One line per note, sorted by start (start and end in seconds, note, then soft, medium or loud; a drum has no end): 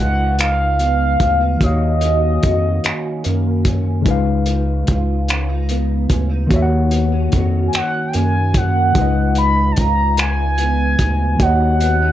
0.00 1.17 C#2 medium
0.00 1.54 C#3 medium
0.00 1.61 C#3 medium
0.00 1.55 G#3 medium
0.00 0.39 D#4 soft
0.00 1.57 D#4 soft
0.00 1.61 F4 medium
0.00 1.58 B4 medium
0.00 1.62 D#5 medium
0.00 0.36 F#5 medium
0.39 1.19 D#4 medium
0.39 1.64 F5 loud
0.39 finger snap loud
0.39 closed hi-hat medium
0.79 1.69 B3 medium
0.79 closed hi-hat soft
1.20 1.57 D2 medium
1.20 1.40 C#4 medium
1.20 kick medium
1.20 closed hi-hat medium
1.40 1.69 D#4 soft
1.58 2.39 D#2 loud
1.58 4.00 D#3 medium
1.58 4.08 D#3 medium
1.58 4.01 A#3 medium
1.58 2.41 F#4 medium
1.58 kick loud
1.58 closed hi-hat medium
1.62 4.02 F#4 medium
1.62 4.03 C#5 medium
1.62 3.66 D#5 loud
1.66 4.04 F5 medium
2.01 2.83 C#4 medium
2.01 closed hi-hat medium
2.42 2.80 F2 medium
2.42 4.05 F#4 medium
2.42 kick medium
2.42 closed hi-hat medium
2.83 2.93 F#2 soft
2.83 3.64 C#4 medium
2.83 finger snap loud
2.83 closed hi-hat medium
3.24 4.08 F#2 medium
3.24 4.14 A#3 medium
3.24 closed hi-hat medium
3.65 4.47 C#4 medium
3.65 kick medium
3.65 closed hi-hat medium
4.02 6.45 C#3 medium
4.02 6.50 C#3 medium
4.02 6.46 G#3 medium
4.02 kick loud
4.06 4.84 C#2 medium
4.06 6.47 D#4 medium
4.06 4.87 F4 medium
4.06 6.48 B4 medium
4.06 closed hi-hat medium
4.11 6.49 F5 medium
4.46 5.28 D#4 soft
4.46 closed hi-hat medium
4.87 6.07 C#2 medium
4.87 6.50 F4 medium
4.87 kick medium
4.87 closed hi-hat medium
5.28 5.49 C#4 medium
5.28 finger snap loud
5.28 closed hi-hat medium
5.49 6.09 D#4 soft
5.69 6.59 B3 medium
5.69 closed hi-hat soft
6.10 6.47 D2 medium
6.10 6.29 C#4 soft
6.10 kick medium
6.10 closed hi-hat medium
6.29 6.58 D#4 soft
6.47 8.89 D#3 medium
6.47 8.98 D#3 medium
6.47 8.90 A#3 medium
6.47 7.32 F#4 medium
6.47 kick loud
6.51 7.28 D#2 loud
6.51 8.92 F#4 medium
6.51 8.93 C#5 medium
6.51 closed hi-hat medium
6.56 6.60 E5 medium
6.62 8.97 F#5 medium
6.91 7.12 B3 medium
6.91 closed hi-hat medium
7.12 7.72 C#4 soft
7.32 7.70 F2 loud
7.32 8.96 F#4 medium
7.32 kick medium
7.32 closed hi-hat medium
7.68 7.77 G#5 medium
7.73 7.82 F#2 soft
7.73 8.55 C#4 medium
7.73 8.10 F#5 loud
7.73 finger snap loud
7.73 closed hi-hat medium
8.08 8.17 G5 medium
8.13 8.92 F#2 medium
8.13 9.04 A#3 medium
8.13 8.58 G#5 medium
8.13 closed hi-hat medium
8.54 9.36 C#4 medium
8.54 9.37 F#5 loud
8.54 kick medium
8.54 closed hi-hat medium
8.93 9.73 C#2 loud
8.93 11.35 C#3 medium
8.93 11.40 C#3 medium
8.93 11.36 G#3 medium
8.93 9.76 F4 medium
8.93 kick loud
8.93 closed hi-hat medium
8.97 11.37 D#4 medium
8.97 11.38 B4 medium
9.01 11.39 D#5 medium
9.35 10.17 D#4 soft
9.35 9.73 B5 loud
9.35 closed hi-hat soft
9.72 9.80 A5 medium
9.76 10.96 C#2 medium
9.76 11.40 F4 medium
9.76 10.18 A#5 loud
9.76 kick medium
9.76 closed hi-hat medium
10.17 10.99 D#4 medium
10.17 11.43 G#5 loud
10.17 finger snap loud
10.17 closed hi-hat medium
10.58 11.48 B3 medium
10.58 closed hi-hat soft
10.99 11.36 D2 medium
10.99 11.81 D#4 medium
10.99 kick medium
10.99 closed hi-hat medium
11.36 12.12 D#2 medium
11.36 12.12 D#3 medium
11.36 12.12 A#3 medium
11.36 kick loud
11.36 closed hi-hat medium
11.41 12.12 F#4 medium
11.41 12.12 C#5 medium
11.41 12.12 F#5 loud
11.45 12.12 D#5 medium
11.80 12.02 B3 medium
11.80 closed hi-hat medium
12.02 12.12 C#4 soft